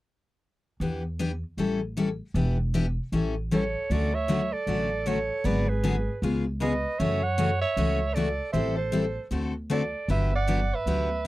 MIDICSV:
0, 0, Header, 1, 5, 480
1, 0, Start_track
1, 0, Key_signature, 2, "major"
1, 0, Tempo, 387347
1, 994, Time_signature, 4, 2, 24, 8
1, 13966, End_track
2, 0, Start_track
2, 0, Title_t, "Clarinet"
2, 0, Program_c, 0, 71
2, 4391, Note_on_c, 0, 73, 83
2, 4850, Note_on_c, 0, 74, 96
2, 4869, Note_off_c, 0, 73, 0
2, 5143, Note_on_c, 0, 76, 94
2, 5162, Note_off_c, 0, 74, 0
2, 5611, Note_on_c, 0, 74, 101
2, 5630, Note_off_c, 0, 76, 0
2, 6279, Note_on_c, 0, 73, 84
2, 6298, Note_off_c, 0, 74, 0
2, 6756, Note_on_c, 0, 74, 89
2, 6775, Note_off_c, 0, 73, 0
2, 7051, Note_on_c, 0, 71, 75
2, 7070, Note_off_c, 0, 74, 0
2, 7712, Note_off_c, 0, 71, 0
2, 8204, Note_on_c, 0, 75, 85
2, 8663, Note_on_c, 0, 76, 97
2, 8681, Note_off_c, 0, 75, 0
2, 8958, Note_on_c, 0, 78, 99
2, 8977, Note_off_c, 0, 76, 0
2, 9425, Note_off_c, 0, 78, 0
2, 9432, Note_on_c, 0, 76, 98
2, 10092, Note_on_c, 0, 74, 87
2, 10110, Note_off_c, 0, 76, 0
2, 10555, Note_off_c, 0, 74, 0
2, 10563, Note_on_c, 0, 76, 85
2, 10850, Note_off_c, 0, 76, 0
2, 10872, Note_on_c, 0, 72, 73
2, 11496, Note_off_c, 0, 72, 0
2, 12046, Note_on_c, 0, 74, 85
2, 12485, Note_off_c, 0, 74, 0
2, 12525, Note_on_c, 0, 76, 83
2, 12793, Note_off_c, 0, 76, 0
2, 12835, Note_on_c, 0, 78, 82
2, 13323, Note_on_c, 0, 76, 94
2, 13342, Note_off_c, 0, 78, 0
2, 13966, Note_off_c, 0, 76, 0
2, 13966, End_track
3, 0, Start_track
3, 0, Title_t, "Soprano saxophone"
3, 0, Program_c, 1, 64
3, 4376, Note_on_c, 1, 69, 72
3, 4844, Note_off_c, 1, 69, 0
3, 4844, Note_on_c, 1, 69, 80
3, 5130, Note_on_c, 1, 73, 81
3, 5149, Note_off_c, 1, 69, 0
3, 5609, Note_on_c, 1, 69, 78
3, 5628, Note_off_c, 1, 73, 0
3, 6283, Note_off_c, 1, 69, 0
3, 6283, Note_on_c, 1, 69, 72
3, 6754, Note_on_c, 1, 71, 79
3, 6773, Note_off_c, 1, 69, 0
3, 7037, Note_on_c, 1, 68, 65
3, 7056, Note_off_c, 1, 71, 0
3, 7705, Note_off_c, 1, 68, 0
3, 8186, Note_on_c, 1, 71, 69
3, 8657, Note_on_c, 1, 73, 80
3, 8675, Note_off_c, 1, 71, 0
3, 8965, Note_off_c, 1, 73, 0
3, 8965, Note_on_c, 1, 73, 90
3, 9429, Note_off_c, 1, 73, 0
3, 9436, Note_on_c, 1, 73, 83
3, 10082, Note_on_c, 1, 69, 70
3, 10100, Note_off_c, 1, 73, 0
3, 10562, Note_off_c, 1, 69, 0
3, 10569, Note_on_c, 1, 72, 79
3, 10853, Note_off_c, 1, 72, 0
3, 10859, Note_on_c, 1, 69, 65
3, 11489, Note_off_c, 1, 69, 0
3, 12042, Note_on_c, 1, 69, 64
3, 12482, Note_off_c, 1, 69, 0
3, 12518, Note_on_c, 1, 71, 76
3, 12789, Note_off_c, 1, 71, 0
3, 12830, Note_on_c, 1, 74, 78
3, 13315, Note_on_c, 1, 71, 80
3, 13333, Note_off_c, 1, 74, 0
3, 13965, Note_off_c, 1, 71, 0
3, 13966, End_track
4, 0, Start_track
4, 0, Title_t, "Steel-string acoustic guitar"
4, 0, Program_c, 2, 25
4, 1006, Note_on_c, 2, 52, 54
4, 1006, Note_on_c, 2, 59, 55
4, 1015, Note_on_c, 2, 62, 53
4, 1019, Note_on_c, 2, 67, 65
4, 1261, Note_off_c, 2, 52, 0
4, 1261, Note_off_c, 2, 59, 0
4, 1266, Note_off_c, 2, 62, 0
4, 1268, Note_off_c, 2, 67, 0
4, 1478, Note_on_c, 2, 59, 78
4, 1481, Note_on_c, 2, 52, 76
4, 1485, Note_on_c, 2, 62, 77
4, 1491, Note_on_c, 2, 67, 88
4, 1614, Note_off_c, 2, 59, 0
4, 1616, Note_off_c, 2, 52, 0
4, 1618, Note_off_c, 2, 62, 0
4, 1621, Note_off_c, 2, 67, 0
4, 1956, Note_on_c, 2, 52, 58
4, 1960, Note_on_c, 2, 55, 60
4, 1965, Note_on_c, 2, 61, 57
4, 1971, Note_on_c, 2, 64, 59
4, 1973, Note_on_c, 2, 69, 69
4, 2216, Note_off_c, 2, 52, 0
4, 2218, Note_off_c, 2, 55, 0
4, 2220, Note_off_c, 2, 61, 0
4, 2224, Note_off_c, 2, 64, 0
4, 2225, Note_off_c, 2, 69, 0
4, 2438, Note_on_c, 2, 52, 71
4, 2445, Note_on_c, 2, 55, 75
4, 2445, Note_on_c, 2, 61, 77
4, 2450, Note_on_c, 2, 69, 82
4, 2452, Note_on_c, 2, 64, 80
4, 2574, Note_off_c, 2, 52, 0
4, 2578, Note_off_c, 2, 55, 0
4, 2578, Note_off_c, 2, 61, 0
4, 2580, Note_off_c, 2, 69, 0
4, 2581, Note_off_c, 2, 64, 0
4, 2916, Note_on_c, 2, 52, 63
4, 2918, Note_on_c, 2, 59, 68
4, 2922, Note_on_c, 2, 62, 63
4, 2930, Note_on_c, 2, 67, 65
4, 3176, Note_off_c, 2, 52, 0
4, 3177, Note_off_c, 2, 59, 0
4, 3179, Note_off_c, 2, 62, 0
4, 3183, Note_off_c, 2, 67, 0
4, 3394, Note_on_c, 2, 52, 79
4, 3398, Note_on_c, 2, 59, 83
4, 3407, Note_on_c, 2, 62, 86
4, 3409, Note_on_c, 2, 67, 90
4, 3532, Note_off_c, 2, 52, 0
4, 3534, Note_off_c, 2, 59, 0
4, 3538, Note_off_c, 2, 62, 0
4, 3539, Note_off_c, 2, 67, 0
4, 3872, Note_on_c, 2, 52, 67
4, 3877, Note_on_c, 2, 55, 57
4, 3878, Note_on_c, 2, 61, 64
4, 3887, Note_on_c, 2, 64, 64
4, 3888, Note_on_c, 2, 69, 62
4, 4134, Note_off_c, 2, 52, 0
4, 4136, Note_off_c, 2, 55, 0
4, 4137, Note_off_c, 2, 61, 0
4, 4141, Note_off_c, 2, 64, 0
4, 4141, Note_off_c, 2, 69, 0
4, 4354, Note_on_c, 2, 52, 81
4, 4363, Note_on_c, 2, 55, 76
4, 4363, Note_on_c, 2, 61, 73
4, 4367, Note_on_c, 2, 64, 74
4, 4372, Note_on_c, 2, 69, 83
4, 4491, Note_off_c, 2, 52, 0
4, 4496, Note_off_c, 2, 55, 0
4, 4496, Note_off_c, 2, 61, 0
4, 4498, Note_off_c, 2, 64, 0
4, 4500, Note_off_c, 2, 69, 0
4, 4841, Note_on_c, 2, 50, 60
4, 4844, Note_on_c, 2, 54, 55
4, 4846, Note_on_c, 2, 57, 64
4, 4852, Note_on_c, 2, 66, 72
4, 4853, Note_on_c, 2, 61, 63
4, 5097, Note_off_c, 2, 50, 0
4, 5099, Note_off_c, 2, 54, 0
4, 5100, Note_off_c, 2, 57, 0
4, 5103, Note_off_c, 2, 66, 0
4, 5104, Note_off_c, 2, 61, 0
4, 5307, Note_on_c, 2, 50, 89
4, 5314, Note_on_c, 2, 57, 86
4, 5318, Note_on_c, 2, 54, 83
4, 5326, Note_on_c, 2, 61, 86
4, 5332, Note_on_c, 2, 66, 80
4, 5447, Note_off_c, 2, 50, 0
4, 5451, Note_off_c, 2, 57, 0
4, 5453, Note_off_c, 2, 54, 0
4, 5457, Note_off_c, 2, 61, 0
4, 5460, Note_off_c, 2, 66, 0
4, 5788, Note_on_c, 2, 50, 59
4, 5792, Note_on_c, 2, 54, 58
4, 5798, Note_on_c, 2, 57, 60
4, 5801, Note_on_c, 2, 61, 60
4, 5809, Note_on_c, 2, 66, 69
4, 6051, Note_off_c, 2, 50, 0
4, 6053, Note_off_c, 2, 54, 0
4, 6056, Note_off_c, 2, 57, 0
4, 6057, Note_off_c, 2, 61, 0
4, 6061, Note_off_c, 2, 66, 0
4, 6267, Note_on_c, 2, 50, 72
4, 6274, Note_on_c, 2, 54, 77
4, 6277, Note_on_c, 2, 57, 86
4, 6287, Note_on_c, 2, 61, 70
4, 6288, Note_on_c, 2, 66, 89
4, 6407, Note_off_c, 2, 50, 0
4, 6411, Note_off_c, 2, 54, 0
4, 6412, Note_off_c, 2, 57, 0
4, 6417, Note_off_c, 2, 61, 0
4, 6418, Note_off_c, 2, 66, 0
4, 6742, Note_on_c, 2, 50, 57
4, 6752, Note_on_c, 2, 54, 65
4, 6755, Note_on_c, 2, 59, 70
4, 6757, Note_on_c, 2, 66, 72
4, 6763, Note_on_c, 2, 68, 77
4, 7007, Note_off_c, 2, 50, 0
4, 7012, Note_off_c, 2, 54, 0
4, 7014, Note_off_c, 2, 59, 0
4, 7015, Note_off_c, 2, 66, 0
4, 7018, Note_off_c, 2, 68, 0
4, 7231, Note_on_c, 2, 50, 71
4, 7232, Note_on_c, 2, 59, 89
4, 7235, Note_on_c, 2, 54, 81
4, 7239, Note_on_c, 2, 66, 78
4, 7244, Note_on_c, 2, 68, 83
4, 7369, Note_off_c, 2, 50, 0
4, 7369, Note_off_c, 2, 59, 0
4, 7371, Note_off_c, 2, 54, 0
4, 7373, Note_off_c, 2, 66, 0
4, 7375, Note_off_c, 2, 68, 0
4, 7722, Note_on_c, 2, 49, 62
4, 7724, Note_on_c, 2, 59, 67
4, 7726, Note_on_c, 2, 56, 66
4, 7728, Note_on_c, 2, 65, 76
4, 7733, Note_on_c, 2, 68, 64
4, 7977, Note_off_c, 2, 49, 0
4, 7978, Note_off_c, 2, 59, 0
4, 7979, Note_off_c, 2, 56, 0
4, 7980, Note_off_c, 2, 65, 0
4, 7982, Note_off_c, 2, 68, 0
4, 8182, Note_on_c, 2, 49, 74
4, 8189, Note_on_c, 2, 56, 75
4, 8197, Note_on_c, 2, 59, 77
4, 8200, Note_on_c, 2, 65, 83
4, 8201, Note_on_c, 2, 68, 77
4, 8324, Note_off_c, 2, 49, 0
4, 8327, Note_off_c, 2, 56, 0
4, 8332, Note_off_c, 2, 59, 0
4, 8333, Note_off_c, 2, 65, 0
4, 8334, Note_off_c, 2, 68, 0
4, 8670, Note_on_c, 2, 49, 62
4, 8673, Note_on_c, 2, 57, 69
4, 8675, Note_on_c, 2, 52, 60
4, 8678, Note_on_c, 2, 61, 69
4, 8686, Note_on_c, 2, 66, 72
4, 8931, Note_off_c, 2, 49, 0
4, 8932, Note_off_c, 2, 57, 0
4, 8933, Note_off_c, 2, 52, 0
4, 8935, Note_off_c, 2, 61, 0
4, 8939, Note_off_c, 2, 66, 0
4, 9144, Note_on_c, 2, 49, 70
4, 9144, Note_on_c, 2, 52, 89
4, 9149, Note_on_c, 2, 57, 84
4, 9154, Note_on_c, 2, 66, 91
4, 9155, Note_on_c, 2, 61, 83
4, 9285, Note_off_c, 2, 49, 0
4, 9285, Note_off_c, 2, 52, 0
4, 9287, Note_off_c, 2, 57, 0
4, 9290, Note_off_c, 2, 61, 0
4, 9290, Note_off_c, 2, 66, 0
4, 9631, Note_on_c, 2, 49, 64
4, 9631, Note_on_c, 2, 52, 71
4, 9636, Note_on_c, 2, 57, 67
4, 9641, Note_on_c, 2, 66, 74
4, 9644, Note_on_c, 2, 61, 75
4, 9891, Note_off_c, 2, 49, 0
4, 9891, Note_off_c, 2, 52, 0
4, 9894, Note_off_c, 2, 57, 0
4, 9896, Note_off_c, 2, 66, 0
4, 9898, Note_off_c, 2, 61, 0
4, 10108, Note_on_c, 2, 49, 76
4, 10118, Note_on_c, 2, 52, 77
4, 10121, Note_on_c, 2, 57, 76
4, 10123, Note_on_c, 2, 61, 79
4, 10130, Note_on_c, 2, 66, 82
4, 10247, Note_off_c, 2, 49, 0
4, 10252, Note_off_c, 2, 52, 0
4, 10253, Note_off_c, 2, 57, 0
4, 10254, Note_off_c, 2, 61, 0
4, 10258, Note_off_c, 2, 66, 0
4, 10576, Note_on_c, 2, 52, 67
4, 10585, Note_on_c, 2, 55, 69
4, 10586, Note_on_c, 2, 60, 63
4, 10593, Note_on_c, 2, 64, 62
4, 10599, Note_on_c, 2, 69, 68
4, 10844, Note_off_c, 2, 52, 0
4, 10848, Note_off_c, 2, 55, 0
4, 10849, Note_off_c, 2, 60, 0
4, 10852, Note_off_c, 2, 64, 0
4, 10855, Note_off_c, 2, 69, 0
4, 11054, Note_on_c, 2, 52, 78
4, 11054, Note_on_c, 2, 55, 84
4, 11060, Note_on_c, 2, 60, 80
4, 11068, Note_on_c, 2, 64, 85
4, 11070, Note_on_c, 2, 69, 95
4, 11200, Note_off_c, 2, 52, 0
4, 11200, Note_off_c, 2, 55, 0
4, 11203, Note_off_c, 2, 60, 0
4, 11207, Note_off_c, 2, 64, 0
4, 11208, Note_off_c, 2, 69, 0
4, 11533, Note_on_c, 2, 50, 64
4, 11543, Note_on_c, 2, 57, 63
4, 11543, Note_on_c, 2, 60, 67
4, 11548, Note_on_c, 2, 66, 60
4, 11553, Note_on_c, 2, 69, 67
4, 11802, Note_off_c, 2, 50, 0
4, 11807, Note_off_c, 2, 57, 0
4, 11807, Note_off_c, 2, 60, 0
4, 11810, Note_off_c, 2, 66, 0
4, 11812, Note_off_c, 2, 69, 0
4, 12016, Note_on_c, 2, 50, 69
4, 12017, Note_on_c, 2, 57, 78
4, 12026, Note_on_c, 2, 60, 77
4, 12031, Note_on_c, 2, 69, 88
4, 12034, Note_on_c, 2, 66, 77
4, 12161, Note_off_c, 2, 50, 0
4, 12161, Note_off_c, 2, 57, 0
4, 12166, Note_off_c, 2, 60, 0
4, 12168, Note_off_c, 2, 69, 0
4, 12170, Note_off_c, 2, 66, 0
4, 12501, Note_on_c, 2, 50, 56
4, 12505, Note_on_c, 2, 54, 60
4, 12511, Note_on_c, 2, 59, 68
4, 12512, Note_on_c, 2, 62, 67
4, 12517, Note_on_c, 2, 67, 71
4, 12766, Note_off_c, 2, 50, 0
4, 12768, Note_off_c, 2, 54, 0
4, 12771, Note_off_c, 2, 59, 0
4, 12772, Note_off_c, 2, 62, 0
4, 12774, Note_off_c, 2, 67, 0
4, 12980, Note_on_c, 2, 50, 75
4, 12986, Note_on_c, 2, 54, 79
4, 12990, Note_on_c, 2, 67, 77
4, 12991, Note_on_c, 2, 59, 77
4, 12992, Note_on_c, 2, 62, 80
4, 13123, Note_off_c, 2, 50, 0
4, 13126, Note_off_c, 2, 54, 0
4, 13128, Note_off_c, 2, 59, 0
4, 13128, Note_off_c, 2, 67, 0
4, 13129, Note_off_c, 2, 62, 0
4, 13468, Note_on_c, 2, 50, 62
4, 13475, Note_on_c, 2, 54, 67
4, 13476, Note_on_c, 2, 59, 71
4, 13477, Note_on_c, 2, 62, 65
4, 13480, Note_on_c, 2, 67, 68
4, 13730, Note_off_c, 2, 50, 0
4, 13734, Note_off_c, 2, 54, 0
4, 13734, Note_off_c, 2, 59, 0
4, 13734, Note_off_c, 2, 62, 0
4, 13736, Note_off_c, 2, 67, 0
4, 13966, End_track
5, 0, Start_track
5, 0, Title_t, "Upright bass"
5, 0, Program_c, 3, 32
5, 991, Note_on_c, 3, 40, 73
5, 1760, Note_off_c, 3, 40, 0
5, 1950, Note_on_c, 3, 33, 60
5, 2719, Note_off_c, 3, 33, 0
5, 2903, Note_on_c, 3, 28, 82
5, 3675, Note_off_c, 3, 28, 0
5, 3868, Note_on_c, 3, 33, 68
5, 4638, Note_off_c, 3, 33, 0
5, 4831, Note_on_c, 3, 38, 80
5, 5599, Note_off_c, 3, 38, 0
5, 5782, Note_on_c, 3, 33, 62
5, 6553, Note_off_c, 3, 33, 0
5, 6746, Note_on_c, 3, 32, 84
5, 7515, Note_off_c, 3, 32, 0
5, 7708, Note_on_c, 3, 37, 75
5, 8476, Note_off_c, 3, 37, 0
5, 8670, Note_on_c, 3, 42, 85
5, 9437, Note_off_c, 3, 42, 0
5, 9623, Note_on_c, 3, 37, 65
5, 10393, Note_off_c, 3, 37, 0
5, 10577, Note_on_c, 3, 33, 81
5, 11350, Note_off_c, 3, 33, 0
5, 11533, Note_on_c, 3, 38, 64
5, 12307, Note_off_c, 3, 38, 0
5, 12495, Note_on_c, 3, 31, 85
5, 13269, Note_off_c, 3, 31, 0
5, 13454, Note_on_c, 3, 38, 58
5, 13966, Note_off_c, 3, 38, 0
5, 13966, End_track
0, 0, End_of_file